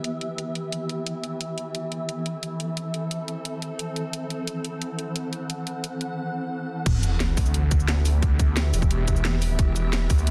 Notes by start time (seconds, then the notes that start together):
Already playing: E3 B3 G4 E5
0.04 closed hi-hat
0.21 closed hi-hat
0.38 closed hi-hat
0.55 closed hi-hat
0.72 closed hi-hat
0.89 closed hi-hat
1.06 closed hi-hat
1.24 closed hi-hat
1.41 C4 A4, closed hi-hat
1.58 closed hi-hat
1.75 closed hi-hat
1.92 closed hi-hat
2.09 closed hi-hat
2.26 closed hi-hat
2.43 closed hi-hat
2.60 closed hi-hat
2.77 closed hi-hat
2.94 closed hi-hat
3.11 closed hi-hat
3.28 closed hi-hat
3.45 closed hi-hat
3.62 closed hi-hat
3.79 closed hi-hat
3.96 closed hi-hat
4.13 F#5, closed hi-hat
4.30 closed hi-hat
4.47 closed hi-hat
4.65 closed hi-hat
4.82 closed hi-hat
4.99 closed hi-hat
5.16 closed hi-hat
5.33 closed hi-hat
5.50 closed hi-hat
5.67 closed hi-hat
5.84 closed hi-hat
6.01 closed hi-hat
6.86 E1 E3 B3 G4 E5, kick, closed hi-hat, crash, sub drop
7.03 closed hi-hat, cabasa
7.20 snare, closed hi-hat, cabasa
7.37 D2, kick, open hi-hat, cabasa
7.46 cabasa
7.54 closed hi-hat
7.71 kick, closed hi-hat, cabasa
7.80 cabasa
7.88 snare, closed hi-hat
8.05 open hi-hat, cabasa
8.22 kick, closed hi-hat
8.39 kick, closed hi-hat, cabasa
8.57 snare, closed hi-hat, cabasa
8.74 E1, open hi-hat, cabasa
8.82 kick, cabasa
8.91 closed hi-hat
9.08 E1, kick, closed hi-hat, cabasa
9.16 cabasa
9.25 snare, closed hi-hat
9.33 snare
9.42 open hi-hat, cabasa
9.59 E1, kick, closed hi-hat
9.76 closed hi-hat, cabasa
9.93 snare, closed hi-hat, cabasa
10.10 D2, kick, open hi-hat, cabasa
10.18 cabasa
10.27 closed hi-hat